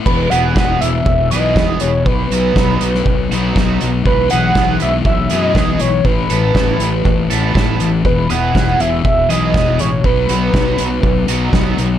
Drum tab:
CC |x---------------|----------------|----------------|----------------|
HH |--x---x---x---x-|--x---x---x---x-|--x---x---x---x-|--x---x---x---x-|
SD |----o-------o---|----o--o----o---|----o-------o---|----o-------o---|
BD |o---o---o---o---|o---o---o---o---|o---o---o---o---|o---o---o---o---|

CC |----------------|----------------|
HH |--x---x---x---x-|--x---x---x---x-|
SD |----o-------o---|----o-------o---|
BD |o---o---o---o---|o---o---o---o---|